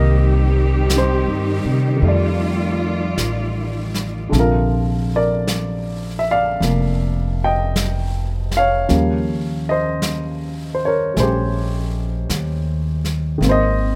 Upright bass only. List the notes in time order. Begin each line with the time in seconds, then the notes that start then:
Already playing: C2
1.27 G2
1.64 C3
2.02 F2
3.18 A1
4.32 A#1
6.60 F1
8.90 D#2
11.17 A#1
12.29 D#2
13.41 G#1